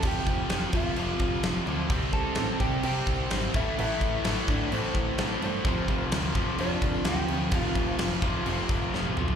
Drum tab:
CC |x-x-x-x-x-x-x-x-|x-x-x-x-x-x-x-x-|x-x-x-x-x-x-x-x-|x-x-x-x-x-x-x-x-|
SD |----o-------o---|----o-------o---|----o-------o---|----o-------o---|
T1 |----------------|----------------|----------------|----------------|
T2 |----------------|----------------|----------------|----------------|
FT |----------------|----------------|----------------|----------------|
BD |o-o---o---o-----|o-o---o---o---o-|--o---o---o-----|o-o---o---o-----|

CC |x-x-x-x-x-x-----|
SD |----o-------o---|
T1 |-------------o--|
T2 |--------------o-|
FT |---------------o|
BD |o-o---o---o-----|